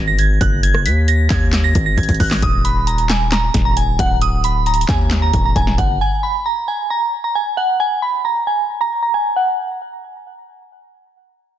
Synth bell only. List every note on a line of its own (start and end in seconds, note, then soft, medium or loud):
0.08 0.17 A#6 medium
0.19 0.38 G#6 medium
0.41 0.60 F#6 medium
0.63 0.82 G#6 loud
0.86 1.05 B6 medium
1.08 1.27 A#6 medium
1.30 1.62 G#6 medium
1.64 1.83 A#6 medium
1.86 1.96 A#6 medium
1.98 2.17 G#6 medium
2.20 2.39 F#6 medium
2.43 2.62 D#6 medium
2.65 2.84 B5 medium
2.87 3.06 A#5 medium
3.09 3.29 G#5 medium
3.32 3.63 A#5 medium
3.65 3.75 A#5 medium
3.77 3.96 G#5 medium
4.00 4.19 F#5 medium
4.22 4.41 D#6 medium
4.44 4.63 B5 medium
4.67 4.86 A#5 medium
4.89 5.20 G#5 medium
5.22 5.41 A#5 medium
5.45 5.55 A#5 medium
5.56 5.75 G#5 medium
5.78 5.97 F#5 medium
6.01 6.20 G#5 medium
6.23 6.42 B5 medium
6.46 6.65 A#5 medium
6.68 6.87 G#5 medium
6.90 7.22 A#5 medium
7.24 7.33 A#5 medium
7.35 7.54 G#5 medium
7.57 7.76 F#5 medium
7.80 7.99 G#5 loud
8.02 8.21 B5 medium
8.25 8.44 A#5 medium
8.47 8.79 G#5 medium
8.81 9.00 A#5 medium
9.03 9.12 A#5 medium
9.14 9.33 G#5 medium
9.36 9.56 F#5 medium